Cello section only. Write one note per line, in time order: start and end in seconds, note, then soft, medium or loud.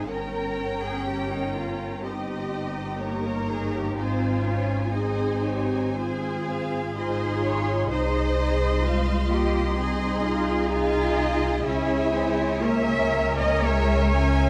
0.09 0.80 A#4 medium
0.82 1.06 G#4 medium
1.06 1.30 G4 medium
1.30 1.54 D#4 medium
1.54 2.03 F4 medium
2.03 3.25 G4 medium
3.25 3.50 A#4 medium
3.50 3.74 G#4 medium
3.74 3.98 G4 medium
3.98 4.94 F4 medium
4.95 6.01 D#4 medium
6.01 6.96 G#4 medium
6.98 7.89 G#4 loud
7.90 9.27 C5 loud
9.31 9.76 G4 loud
9.76 10.70 G#4 medium
10.70 11.63 F4 loud
11.63 12.66 E4 loud
12.65 13.39 E5 loud
13.38 13.63 D#5 loud
13.63 14.50 C#5 loud